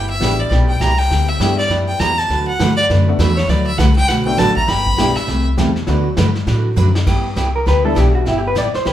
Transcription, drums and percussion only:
0.22 snare medium
0.22 hi-hat pedal medium
0.52 brush sweep soft
0.52 snare soft
0.81 snare medium
0.81 hi-hat pedal medium
1.00 snare soft
1.11 brush sweep medium
1.11 snare soft
1.41 snare medium
1.41 hi-hat pedal medium
1.59 snare soft
1.70 brush sweep soft
1.70 snare soft
2.00 snare medium
2.00 hi-hat pedal medium
2.19 snare soft
2.30 brush sweep medium
2.30 snare soft
2.60 snare medium
2.60 hi-hat pedal medium
2.78 snare soft
2.90 brush sweep soft
2.90 snare soft
3.19 snare medium
3.19 hi-hat pedal medium
3.38 snare soft
3.49 brush sweep medium
3.49 snare soft
3.79 snare medium
3.79 hi-hat pedal medium
3.97 snare soft
4.09 brush sweep soft
4.09 snare soft
4.38 snare medium
4.38 hi-hat pedal medium
4.57 kick medium
4.68 brush sweep medium
4.68 snare soft
4.87 kick medium
4.98 snare medium
4.98 hi-hat pedal medium
5.17 snare medium
5.28 brush sweep medium
5.28 snare soft
5.58 snare medium
5.58 hi-hat pedal medium
5.76 snare soft
5.87 brush sweep medium
5.87 snare soft
6.17 snare medium
6.17 hi-hat pedal medium
6.35 snare soft
6.47 brush sweep medium
6.47 snare soft
6.77 hi-hat pedal medium
6.95 snare medium
7.07 brush sweep soft
7.07 kick medium
7.07 snare soft
7.07 crash medium
7.36 snare medium
7.36 hi-hat pedal soft
7.67 brush sweep soft
7.67 snare soft
7.96 snare medium
7.96 hi-hat pedal medium
8.26 brush sweep soft
8.26 snare soft
8.56 snare medium
8.56 hi-hat pedal medium
8.74 snare soft
8.86 brush sweep soft
8.86 snare soft

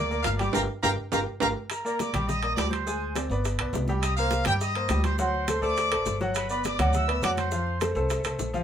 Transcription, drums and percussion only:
0.11 high bongo soft
0.11 high conga soft
0.11 maracas soft
0.24 high bongo soft
0.24 low bongo medium
0.24 high conga medium
0.24 high timbale medium
0.24 low timbale medium
0.24 maracas medium
0.39 high bongo soft
0.39 high conga medium
0.39 high timbale medium
0.39 maracas soft
0.53 high bongo medium
0.53 high conga loud
0.53 high timbale loud
0.53 maracas loud
0.83 high bongo loud
0.83 high conga loud
0.83 high timbale medium
0.83 maracas loud
1.12 high bongo loud
1.12 high conga loud
1.12 high timbale medium
1.12 maracas medium
1.40 high bongo loud
1.40 high conga loud
1.40 high timbale loud
1.40 maracas loud
1.70 high bongo medium
1.70 high conga soft
1.70 high timbale loud
1.70 maracas medium
1.85 high conga soft
1.85 maracas medium
1.99 high bongo medium
1.99 high conga loud
1.99 high timbale medium
1.99 maracas medium
2.14 high conga medium
2.14 low conga medium
2.14 high timbale medium
2.14 maracas soft
2.29 high bongo medium
2.29 high conga soft
2.29 low conga medium
2.29 maracas medium
2.43 high conga soft
2.43 high timbale medium
2.57 high bongo medium
2.57 low bongo medium
2.57 high conga medium
2.57 high timbale loud
2.57 low timbale medium
2.57 maracas medium
2.71 high conga medium
2.71 high timbale medium
2.71 maracas soft
2.87 high bongo medium
2.87 high conga soft
2.87 maracas medium
3.01 high conga soft
3.15 high bongo medium
3.15 high conga medium
3.15 high timbale medium
3.15 maracas medium
3.31 high bongo soft
3.31 maracas soft
3.44 high bongo medium
3.44 high conga soft
3.44 high timbale medium
3.44 maracas medium
3.59 high bongo soft
3.59 high conga soft
3.59 high timbale loud
3.73 high bongo medium
3.73 low bongo medium
3.73 high conga medium
3.73 low timbale medium
3.73 maracas medium
3.88 high bongo soft
3.88 high conga medium
3.88 maracas soft
4.03 high bongo medium
4.03 high conga soft
4.03 high timbale medium
4.03 maracas medium
4.17 high conga soft
4.17 maracas medium
4.31 high bongo medium
4.31 high conga loud
4.31 high timbale medium
4.31 maracas medium
4.45 high conga medium
4.45 low conga medium
4.45 high timbale loud
4.45 maracas soft
4.61 high bongo medium
4.61 high conga soft
4.61 maracas medium
4.75 high conga soft
4.75 high timbale medium
4.89 high bongo medium
4.89 low bongo medium
4.89 high conga medium
4.89 high timbale medium
4.89 low timbale medium
4.89 maracas medium
5.04 high conga loud
5.04 high timbale medium
5.04 maracas soft
5.18 high bongo medium
5.18 high conga soft
5.18 maracas medium
5.34 high conga soft
5.48 high bongo medium
5.48 high conga medium
5.48 high timbale medium
5.48 maracas medium
5.62 high bongo soft
5.62 maracas soft
5.77 high bongo medium
5.77 high conga soft
5.77 high timbale medium
5.77 maracas medium
5.92 high bongo soft
5.92 high conga soft
5.92 high timbale loud
6.06 high bongo medium
6.06 low bongo medium
6.06 high conga medium
6.06 maracas medium
6.20 high bongo soft
6.20 high conga medium
6.20 maracas soft
6.34 high bongo medium
6.34 high conga soft
6.34 high timbale loud
6.34 maracas medium
6.49 high conga soft
6.49 maracas medium
6.64 high bongo medium
6.64 high conga medium
6.64 high timbale medium
6.64 maracas medium
6.79 high conga medium
6.79 low conga medium
6.79 high timbale loud
6.79 maracas soft
6.93 high bongo medium
6.93 high conga soft
6.93 low conga medium
6.93 maracas medium
7.09 high conga soft
7.09 high timbale medium
7.22 high bongo medium
7.22 low bongo medium
7.22 high conga medium
7.22 high timbale loud
7.22 maracas medium
7.37 high conga medium
7.37 high timbale medium
7.37 maracas soft
7.51 high bongo medium
7.51 high conga soft
7.51 maracas medium
7.67 high conga soft
7.81 high bongo medium
7.81 high conga medium
7.81 high timbale medium
7.81 maracas medium
7.95 high bongo soft
7.95 maracas soft
8.09 high bongo medium
8.09 high conga soft
8.09 high timbale medium
8.09 maracas medium
8.24 high bongo soft
8.24 high conga soft
8.24 high timbale loud
8.24 maracas medium
8.39 high bongo medium
8.39 low bongo medium
8.39 high conga medium
8.39 maracas medium
8.54 high bongo soft
8.54 high conga medium
8.54 maracas soft

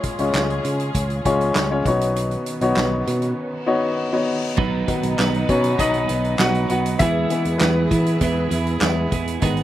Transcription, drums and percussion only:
0.03 kick medium
0.03 closed hi-hat medium
0.19 closed hi-hat medium
0.35 snare medium
0.35 clap medium
0.50 closed hi-hat soft
0.65 closed hi-hat medium
0.80 closed hi-hat soft
0.95 kick medium
0.95 closed hi-hat medium
1.10 closed hi-hat soft
1.25 kick medium
1.25 closed hi-hat medium
1.41 closed hi-hat soft
1.55 snare loud
1.55 clap medium
1.86 kick medium
1.86 closed hi-hat medium
2.01 closed hi-hat medium
2.16 closed hi-hat medium
2.31 closed hi-hat soft
2.46 closed hi-hat medium
2.61 closed hi-hat soft
2.76 snare medium
2.76 clap medium
3.07 snare soft
3.07 closed hi-hat medium
3.22 closed hi-hat soft
4.58 kick loud
4.58 crash medium
4.88 kick medium
4.88 closed hi-hat medium
5.03 closed hi-hat medium
5.19 snare medium
5.19 clap medium
5.34 closed hi-hat soft
5.49 kick medium
5.49 closed hi-hat medium
5.64 closed hi-hat medium
5.79 kick medium
5.79 closed hi-hat medium
5.94 closed hi-hat soft
6.09 closed hi-hat medium
6.24 closed hi-hat soft
6.39 snare loud
6.39 clap medium
6.55 closed hi-hat soft
6.70 closed hi-hat medium
6.86 closed hi-hat medium
6.99 kick loud
6.99 closed hi-hat loud
7.30 closed hi-hat medium
7.45 closed hi-hat medium
7.61 snare loud
7.61 clap medium
7.91 kick medium
7.91 closed hi-hat medium
8.06 closed hi-hat soft
8.21 kick medium
8.21 closed hi-hat medium
8.51 closed hi-hat medium
8.67 closed hi-hat soft
8.81 snare loud
8.81 clap medium
9.12 kick medium
9.12 closed hi-hat medium
9.28 closed hi-hat medium
9.42 kick medium
9.42 closed hi-hat medium
9.57 closed hi-hat soft

